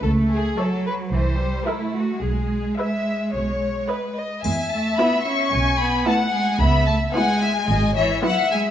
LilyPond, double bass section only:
\new Staff \with { instrumentName = "Double bass section" } { \clef bass \time 4/4 \key e \major \tempo 4 = 111 cis,4 r4 c,4 r4 | b,,4 r4 b,,4 r4 | e,4 r4 b,,4 r4 | cis,4 r4 gis,,4 r4 | }